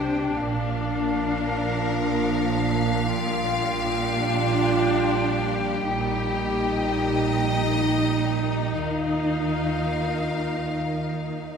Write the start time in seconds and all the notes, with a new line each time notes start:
Already playing: C2 C3 G3 D4 G4 C5 G5
0.35 A#1 A#2 F3 A#4 F5
3.06 G3 D4 F4 G4 G5
5.83 A#1 A#2 D#4 D#5
8.77 D#2 D#3 A#3 F4 A#4 F5